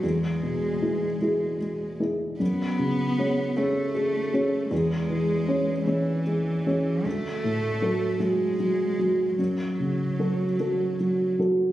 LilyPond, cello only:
\new Staff \with { instrumentName = "Cello" } { \clef bass \time 6/8 \key fis \minor \tempo 4. = 51 gis2~ gis8 r8 | b4. a4. | gis4. e4. | a4. gis4. |
fis2~ fis8 r8 | }